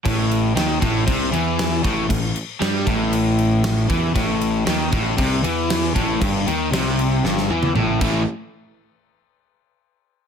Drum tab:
CC |x-x-x-x-x-x-x-x-|x-x-x-x-x-x-x-x-|x-x-x-x-x-x-x-x-|x-x-x-x-------x-|
SD |----o-------o---|----o-------o---|----o-------o---|----o---oo------|
T1 |----------------|----------------|----------------|-----------o----|
T2 |----------------|----------------|----------------|------------o---|
BD |o-----o-o-----o-|o-----o-------o-|o-----o-o-----o-|o-------------o-|

CC |----------------|
SD |----------------|
T1 |----------------|
T2 |----------------|
BD |----------------|